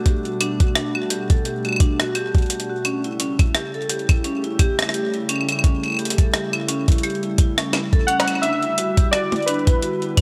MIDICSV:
0, 0, Header, 1, 5, 480
1, 0, Start_track
1, 0, Tempo, 697674
1, 40, Time_signature, 4, 2, 24, 8
1, 7024, End_track
2, 0, Start_track
2, 0, Title_t, "Synth keys"
2, 0, Program_c, 0, 88
2, 5551, Note_on_c, 0, 78, 107
2, 5778, Note_off_c, 0, 78, 0
2, 5791, Note_on_c, 0, 76, 106
2, 6248, Note_off_c, 0, 76, 0
2, 6270, Note_on_c, 0, 74, 97
2, 6509, Note_on_c, 0, 71, 82
2, 6522, Note_off_c, 0, 74, 0
2, 7024, Note_off_c, 0, 71, 0
2, 7024, End_track
3, 0, Start_track
3, 0, Title_t, "Vibraphone"
3, 0, Program_c, 1, 11
3, 40, Note_on_c, 1, 67, 80
3, 167, Note_off_c, 1, 67, 0
3, 175, Note_on_c, 1, 66, 74
3, 242, Note_off_c, 1, 66, 0
3, 280, Note_on_c, 1, 62, 100
3, 366, Note_off_c, 1, 62, 0
3, 415, Note_on_c, 1, 66, 74
3, 482, Note_off_c, 1, 66, 0
3, 520, Note_on_c, 1, 62, 98
3, 571, Note_off_c, 1, 62, 0
3, 655, Note_on_c, 1, 66, 75
3, 722, Note_off_c, 1, 66, 0
3, 760, Note_on_c, 1, 67, 76
3, 846, Note_off_c, 1, 67, 0
3, 895, Note_on_c, 1, 69, 76
3, 962, Note_off_c, 1, 69, 0
3, 1000, Note_on_c, 1, 67, 82
3, 1128, Note_off_c, 1, 67, 0
3, 1134, Note_on_c, 1, 66, 74
3, 1201, Note_off_c, 1, 66, 0
3, 1240, Note_on_c, 1, 62, 102
3, 1326, Note_off_c, 1, 62, 0
3, 1374, Note_on_c, 1, 66, 102
3, 1415, Note_off_c, 1, 66, 0
3, 1480, Note_on_c, 1, 67, 99
3, 1566, Note_off_c, 1, 67, 0
3, 1615, Note_on_c, 1, 66, 77
3, 1682, Note_off_c, 1, 66, 0
3, 1720, Note_on_c, 1, 67, 75
3, 1847, Note_off_c, 1, 67, 0
3, 1854, Note_on_c, 1, 66, 76
3, 1922, Note_off_c, 1, 66, 0
3, 1960, Note_on_c, 1, 61, 100
3, 2046, Note_off_c, 1, 61, 0
3, 2094, Note_on_c, 1, 64, 74
3, 2162, Note_off_c, 1, 64, 0
3, 2200, Note_on_c, 1, 61, 100
3, 2251, Note_off_c, 1, 61, 0
3, 2334, Note_on_c, 1, 64, 77
3, 2401, Note_off_c, 1, 64, 0
3, 2440, Note_on_c, 1, 67, 85
3, 2526, Note_off_c, 1, 67, 0
3, 2574, Note_on_c, 1, 69, 76
3, 2642, Note_off_c, 1, 69, 0
3, 2680, Note_on_c, 1, 67, 78
3, 2808, Note_off_c, 1, 67, 0
3, 2814, Note_on_c, 1, 64, 77
3, 2881, Note_off_c, 1, 64, 0
3, 2919, Note_on_c, 1, 61, 99
3, 3005, Note_off_c, 1, 61, 0
3, 3054, Note_on_c, 1, 64, 101
3, 3094, Note_off_c, 1, 64, 0
3, 3159, Note_on_c, 1, 67, 104
3, 3245, Note_off_c, 1, 67, 0
3, 3294, Note_on_c, 1, 64, 77
3, 3362, Note_off_c, 1, 64, 0
3, 3400, Note_on_c, 1, 67, 80
3, 3527, Note_off_c, 1, 67, 0
3, 3534, Note_on_c, 1, 64, 78
3, 3601, Note_off_c, 1, 64, 0
3, 3640, Note_on_c, 1, 61, 101
3, 3725, Note_off_c, 1, 61, 0
3, 3774, Note_on_c, 1, 64, 76
3, 3842, Note_off_c, 1, 64, 0
3, 3880, Note_on_c, 1, 61, 97
3, 3931, Note_off_c, 1, 61, 0
3, 4014, Note_on_c, 1, 64, 77
3, 4081, Note_off_c, 1, 64, 0
3, 4119, Note_on_c, 1, 67, 78
3, 4205, Note_off_c, 1, 67, 0
3, 4254, Note_on_c, 1, 69, 79
3, 4322, Note_off_c, 1, 69, 0
3, 4359, Note_on_c, 1, 67, 85
3, 4487, Note_off_c, 1, 67, 0
3, 4494, Note_on_c, 1, 64, 76
3, 4561, Note_off_c, 1, 64, 0
3, 4599, Note_on_c, 1, 61, 100
3, 4685, Note_off_c, 1, 61, 0
3, 4734, Note_on_c, 1, 64, 103
3, 4774, Note_off_c, 1, 64, 0
3, 4839, Note_on_c, 1, 67, 101
3, 4925, Note_off_c, 1, 67, 0
3, 4974, Note_on_c, 1, 64, 75
3, 5041, Note_off_c, 1, 64, 0
3, 5080, Note_on_c, 1, 64, 104
3, 5131, Note_off_c, 1, 64, 0
3, 5214, Note_on_c, 1, 61, 79
3, 5254, Note_off_c, 1, 61, 0
3, 5319, Note_on_c, 1, 64, 81
3, 5371, Note_off_c, 1, 64, 0
3, 5453, Note_on_c, 1, 69, 99
3, 5554, Note_off_c, 1, 69, 0
3, 5559, Note_on_c, 1, 61, 98
3, 5685, Note_off_c, 1, 61, 0
3, 5693, Note_on_c, 1, 61, 78
3, 5734, Note_off_c, 1, 61, 0
3, 5799, Note_on_c, 1, 62, 98
3, 5851, Note_off_c, 1, 62, 0
3, 5933, Note_on_c, 1, 64, 75
3, 6001, Note_off_c, 1, 64, 0
3, 6039, Note_on_c, 1, 66, 76
3, 6125, Note_off_c, 1, 66, 0
3, 6173, Note_on_c, 1, 67, 75
3, 6241, Note_off_c, 1, 67, 0
3, 6279, Note_on_c, 1, 66, 83
3, 6407, Note_off_c, 1, 66, 0
3, 6413, Note_on_c, 1, 64, 77
3, 6481, Note_off_c, 1, 64, 0
3, 6519, Note_on_c, 1, 62, 103
3, 6605, Note_off_c, 1, 62, 0
3, 6653, Note_on_c, 1, 64, 103
3, 6694, Note_off_c, 1, 64, 0
3, 6759, Note_on_c, 1, 66, 99
3, 6845, Note_off_c, 1, 66, 0
3, 6893, Note_on_c, 1, 64, 73
3, 6961, Note_off_c, 1, 64, 0
3, 6999, Note_on_c, 1, 66, 76
3, 7024, Note_off_c, 1, 66, 0
3, 7024, End_track
4, 0, Start_track
4, 0, Title_t, "Ambient pad"
4, 0, Program_c, 2, 92
4, 0, Note_on_c, 2, 47, 73
4, 0, Note_on_c, 2, 55, 85
4, 0, Note_on_c, 2, 57, 81
4, 0, Note_on_c, 2, 62, 75
4, 0, Note_on_c, 2, 78, 65
4, 1960, Note_off_c, 2, 47, 0
4, 1960, Note_off_c, 2, 62, 0
4, 1960, Note_off_c, 2, 78, 0
4, 1961, Note_on_c, 2, 49, 88
4, 2395, Note_on_c, 2, 67, 74
4, 2439, Note_on_c, 2, 64, 72
4, 5800, Note_off_c, 2, 49, 0
4, 5800, Note_off_c, 2, 57, 0
4, 5800, Note_off_c, 2, 67, 0
4, 5801, Note_on_c, 2, 50, 88
4, 6266, Note_on_c, 2, 59, 78
4, 7024, Note_off_c, 2, 50, 0
4, 7024, Note_off_c, 2, 55, 0
4, 7024, Note_off_c, 2, 59, 0
4, 7024, Note_off_c, 2, 64, 0
4, 7024, End_track
5, 0, Start_track
5, 0, Title_t, "Drums"
5, 39, Note_on_c, 9, 36, 81
5, 39, Note_on_c, 9, 42, 48
5, 108, Note_off_c, 9, 36, 0
5, 108, Note_off_c, 9, 42, 0
5, 174, Note_on_c, 9, 42, 24
5, 242, Note_off_c, 9, 42, 0
5, 279, Note_on_c, 9, 42, 82
5, 279, Note_on_c, 9, 75, 76
5, 348, Note_off_c, 9, 42, 0
5, 348, Note_off_c, 9, 75, 0
5, 413, Note_on_c, 9, 42, 50
5, 414, Note_on_c, 9, 36, 100
5, 482, Note_off_c, 9, 42, 0
5, 483, Note_off_c, 9, 36, 0
5, 519, Note_on_c, 9, 37, 111
5, 519, Note_on_c, 9, 42, 49
5, 588, Note_off_c, 9, 37, 0
5, 588, Note_off_c, 9, 42, 0
5, 653, Note_on_c, 9, 75, 52
5, 722, Note_off_c, 9, 75, 0
5, 759, Note_on_c, 9, 42, 81
5, 828, Note_off_c, 9, 42, 0
5, 893, Note_on_c, 9, 42, 51
5, 894, Note_on_c, 9, 36, 103
5, 962, Note_off_c, 9, 42, 0
5, 963, Note_off_c, 9, 36, 0
5, 999, Note_on_c, 9, 42, 48
5, 1068, Note_off_c, 9, 42, 0
5, 1133, Note_on_c, 9, 42, 24
5, 1133, Note_on_c, 9, 75, 35
5, 1160, Note_off_c, 9, 75, 0
5, 1160, Note_on_c, 9, 75, 43
5, 1187, Note_off_c, 9, 75, 0
5, 1187, Note_on_c, 9, 75, 52
5, 1202, Note_off_c, 9, 42, 0
5, 1213, Note_off_c, 9, 75, 0
5, 1213, Note_on_c, 9, 75, 64
5, 1239, Note_on_c, 9, 42, 85
5, 1240, Note_on_c, 9, 36, 110
5, 1282, Note_off_c, 9, 75, 0
5, 1308, Note_off_c, 9, 36, 0
5, 1308, Note_off_c, 9, 42, 0
5, 1373, Note_on_c, 9, 37, 107
5, 1373, Note_on_c, 9, 42, 47
5, 1442, Note_off_c, 9, 37, 0
5, 1442, Note_off_c, 9, 42, 0
5, 1479, Note_on_c, 9, 42, 51
5, 1479, Note_on_c, 9, 75, 51
5, 1548, Note_off_c, 9, 42, 0
5, 1548, Note_off_c, 9, 75, 0
5, 1614, Note_on_c, 9, 36, 95
5, 1614, Note_on_c, 9, 42, 23
5, 1640, Note_off_c, 9, 42, 0
5, 1640, Note_on_c, 9, 42, 19
5, 1667, Note_off_c, 9, 42, 0
5, 1667, Note_on_c, 9, 42, 16
5, 1683, Note_off_c, 9, 36, 0
5, 1693, Note_off_c, 9, 42, 0
5, 1693, Note_on_c, 9, 42, 13
5, 1719, Note_off_c, 9, 42, 0
5, 1719, Note_on_c, 9, 42, 88
5, 1753, Note_off_c, 9, 42, 0
5, 1753, Note_on_c, 9, 42, 9
5, 1787, Note_off_c, 9, 42, 0
5, 1787, Note_on_c, 9, 42, 49
5, 1820, Note_off_c, 9, 42, 0
5, 1820, Note_on_c, 9, 42, 6
5, 1889, Note_off_c, 9, 42, 0
5, 1959, Note_on_c, 9, 42, 49
5, 1959, Note_on_c, 9, 75, 78
5, 2028, Note_off_c, 9, 42, 0
5, 2028, Note_off_c, 9, 75, 0
5, 2094, Note_on_c, 9, 42, 25
5, 2163, Note_off_c, 9, 42, 0
5, 2199, Note_on_c, 9, 42, 84
5, 2268, Note_off_c, 9, 42, 0
5, 2334, Note_on_c, 9, 36, 100
5, 2334, Note_on_c, 9, 42, 53
5, 2334, Note_on_c, 9, 75, 56
5, 2403, Note_off_c, 9, 36, 0
5, 2403, Note_off_c, 9, 42, 0
5, 2403, Note_off_c, 9, 75, 0
5, 2439, Note_on_c, 9, 37, 107
5, 2439, Note_on_c, 9, 42, 51
5, 2508, Note_off_c, 9, 37, 0
5, 2508, Note_off_c, 9, 42, 0
5, 2574, Note_on_c, 9, 42, 11
5, 2627, Note_off_c, 9, 42, 0
5, 2627, Note_on_c, 9, 42, 15
5, 2679, Note_off_c, 9, 42, 0
5, 2679, Note_on_c, 9, 42, 89
5, 2747, Note_off_c, 9, 42, 0
5, 2747, Note_on_c, 9, 42, 20
5, 2814, Note_off_c, 9, 42, 0
5, 2814, Note_on_c, 9, 36, 100
5, 2814, Note_on_c, 9, 42, 52
5, 2814, Note_on_c, 9, 75, 83
5, 2882, Note_off_c, 9, 42, 0
5, 2882, Note_off_c, 9, 75, 0
5, 2883, Note_off_c, 9, 36, 0
5, 2919, Note_on_c, 9, 42, 50
5, 2988, Note_off_c, 9, 42, 0
5, 3054, Note_on_c, 9, 42, 24
5, 3123, Note_off_c, 9, 42, 0
5, 3160, Note_on_c, 9, 36, 105
5, 3160, Note_on_c, 9, 42, 87
5, 3160, Note_on_c, 9, 75, 54
5, 3228, Note_off_c, 9, 36, 0
5, 3228, Note_off_c, 9, 42, 0
5, 3228, Note_off_c, 9, 75, 0
5, 3294, Note_on_c, 9, 37, 101
5, 3294, Note_on_c, 9, 42, 51
5, 3319, Note_off_c, 9, 37, 0
5, 3319, Note_on_c, 9, 37, 80
5, 3363, Note_off_c, 9, 42, 0
5, 3364, Note_off_c, 9, 37, 0
5, 3364, Note_on_c, 9, 37, 69
5, 3399, Note_on_c, 9, 42, 50
5, 3433, Note_off_c, 9, 37, 0
5, 3468, Note_off_c, 9, 42, 0
5, 3534, Note_on_c, 9, 42, 26
5, 3603, Note_off_c, 9, 42, 0
5, 3639, Note_on_c, 9, 42, 91
5, 3639, Note_on_c, 9, 75, 37
5, 3684, Note_off_c, 9, 75, 0
5, 3684, Note_on_c, 9, 75, 43
5, 3708, Note_off_c, 9, 42, 0
5, 3720, Note_off_c, 9, 75, 0
5, 3720, Note_on_c, 9, 75, 49
5, 3774, Note_off_c, 9, 75, 0
5, 3774, Note_on_c, 9, 42, 52
5, 3774, Note_on_c, 9, 75, 55
5, 3800, Note_off_c, 9, 75, 0
5, 3800, Note_on_c, 9, 75, 64
5, 3843, Note_off_c, 9, 42, 0
5, 3845, Note_off_c, 9, 75, 0
5, 3845, Note_on_c, 9, 75, 67
5, 3880, Note_on_c, 9, 36, 82
5, 3880, Note_on_c, 9, 42, 53
5, 3913, Note_off_c, 9, 75, 0
5, 3948, Note_off_c, 9, 36, 0
5, 3949, Note_off_c, 9, 42, 0
5, 4014, Note_on_c, 9, 42, 27
5, 4014, Note_on_c, 9, 75, 24
5, 4029, Note_off_c, 9, 75, 0
5, 4029, Note_on_c, 9, 75, 28
5, 4045, Note_off_c, 9, 75, 0
5, 4045, Note_on_c, 9, 75, 31
5, 4059, Note_off_c, 9, 75, 0
5, 4059, Note_on_c, 9, 75, 36
5, 4075, Note_off_c, 9, 75, 0
5, 4075, Note_on_c, 9, 75, 40
5, 4083, Note_off_c, 9, 42, 0
5, 4090, Note_off_c, 9, 75, 0
5, 4090, Note_on_c, 9, 75, 44
5, 4105, Note_off_c, 9, 75, 0
5, 4105, Note_on_c, 9, 75, 48
5, 4120, Note_on_c, 9, 42, 42
5, 4165, Note_off_c, 9, 42, 0
5, 4165, Note_on_c, 9, 42, 55
5, 4174, Note_off_c, 9, 75, 0
5, 4199, Note_off_c, 9, 42, 0
5, 4199, Note_on_c, 9, 42, 72
5, 4254, Note_off_c, 9, 42, 0
5, 4254, Note_on_c, 9, 36, 95
5, 4254, Note_on_c, 9, 42, 56
5, 4323, Note_off_c, 9, 36, 0
5, 4323, Note_off_c, 9, 42, 0
5, 4359, Note_on_c, 9, 37, 114
5, 4359, Note_on_c, 9, 42, 53
5, 4428, Note_off_c, 9, 37, 0
5, 4428, Note_off_c, 9, 42, 0
5, 4494, Note_on_c, 9, 42, 27
5, 4494, Note_on_c, 9, 75, 82
5, 4563, Note_off_c, 9, 42, 0
5, 4563, Note_off_c, 9, 75, 0
5, 4599, Note_on_c, 9, 42, 94
5, 4668, Note_off_c, 9, 42, 0
5, 4734, Note_on_c, 9, 36, 104
5, 4734, Note_on_c, 9, 42, 52
5, 4759, Note_off_c, 9, 42, 0
5, 4759, Note_on_c, 9, 42, 42
5, 4803, Note_off_c, 9, 36, 0
5, 4804, Note_off_c, 9, 42, 0
5, 4804, Note_on_c, 9, 42, 34
5, 4839, Note_off_c, 9, 42, 0
5, 4839, Note_on_c, 9, 42, 52
5, 4839, Note_on_c, 9, 75, 53
5, 4884, Note_off_c, 9, 42, 0
5, 4884, Note_on_c, 9, 42, 22
5, 4908, Note_off_c, 9, 75, 0
5, 4919, Note_off_c, 9, 42, 0
5, 4919, Note_on_c, 9, 42, 19
5, 4974, Note_off_c, 9, 42, 0
5, 4974, Note_on_c, 9, 42, 26
5, 5042, Note_off_c, 9, 42, 0
5, 5079, Note_on_c, 9, 42, 92
5, 5080, Note_on_c, 9, 36, 109
5, 5148, Note_off_c, 9, 36, 0
5, 5148, Note_off_c, 9, 42, 0
5, 5214, Note_on_c, 9, 37, 108
5, 5214, Note_on_c, 9, 42, 50
5, 5282, Note_off_c, 9, 37, 0
5, 5282, Note_off_c, 9, 42, 0
5, 5319, Note_on_c, 9, 38, 67
5, 5319, Note_on_c, 9, 42, 53
5, 5319, Note_on_c, 9, 75, 83
5, 5388, Note_off_c, 9, 38, 0
5, 5388, Note_off_c, 9, 42, 0
5, 5388, Note_off_c, 9, 75, 0
5, 5454, Note_on_c, 9, 36, 96
5, 5454, Note_on_c, 9, 42, 27
5, 5523, Note_off_c, 9, 36, 0
5, 5523, Note_off_c, 9, 42, 0
5, 5559, Note_on_c, 9, 42, 93
5, 5628, Note_off_c, 9, 42, 0
5, 5639, Note_on_c, 9, 38, 99
5, 5693, Note_on_c, 9, 42, 51
5, 5693, Note_on_c, 9, 75, 54
5, 5708, Note_off_c, 9, 38, 0
5, 5747, Note_off_c, 9, 75, 0
5, 5747, Note_on_c, 9, 75, 42
5, 5762, Note_off_c, 9, 42, 0
5, 5799, Note_off_c, 9, 75, 0
5, 5799, Note_on_c, 9, 42, 55
5, 5799, Note_on_c, 9, 75, 35
5, 5867, Note_off_c, 9, 75, 0
5, 5867, Note_on_c, 9, 75, 27
5, 5868, Note_off_c, 9, 42, 0
5, 5934, Note_on_c, 9, 42, 27
5, 5935, Note_off_c, 9, 75, 0
5, 6003, Note_off_c, 9, 42, 0
5, 6039, Note_on_c, 9, 42, 94
5, 6108, Note_off_c, 9, 42, 0
5, 6174, Note_on_c, 9, 36, 105
5, 6174, Note_on_c, 9, 42, 58
5, 6243, Note_off_c, 9, 36, 0
5, 6243, Note_off_c, 9, 42, 0
5, 6280, Note_on_c, 9, 37, 119
5, 6280, Note_on_c, 9, 42, 55
5, 6280, Note_on_c, 9, 75, 56
5, 6348, Note_off_c, 9, 37, 0
5, 6348, Note_off_c, 9, 42, 0
5, 6348, Note_off_c, 9, 75, 0
5, 6414, Note_on_c, 9, 42, 27
5, 6414, Note_on_c, 9, 48, 91
5, 6439, Note_off_c, 9, 42, 0
5, 6439, Note_on_c, 9, 42, 21
5, 6482, Note_off_c, 9, 48, 0
5, 6484, Note_off_c, 9, 42, 0
5, 6484, Note_on_c, 9, 42, 19
5, 6519, Note_off_c, 9, 42, 0
5, 6519, Note_on_c, 9, 42, 95
5, 6588, Note_off_c, 9, 42, 0
5, 6599, Note_on_c, 9, 42, 10
5, 6654, Note_off_c, 9, 42, 0
5, 6654, Note_on_c, 9, 36, 107
5, 6654, Note_on_c, 9, 42, 58
5, 6722, Note_off_c, 9, 42, 0
5, 6723, Note_off_c, 9, 36, 0
5, 6759, Note_on_c, 9, 42, 56
5, 6828, Note_off_c, 9, 42, 0
5, 6894, Note_on_c, 9, 42, 27
5, 6963, Note_off_c, 9, 42, 0
5, 6999, Note_on_c, 9, 36, 118
5, 6999, Note_on_c, 9, 42, 96
5, 6999, Note_on_c, 9, 75, 81
5, 7024, Note_off_c, 9, 36, 0
5, 7024, Note_off_c, 9, 42, 0
5, 7024, Note_off_c, 9, 75, 0
5, 7024, End_track
0, 0, End_of_file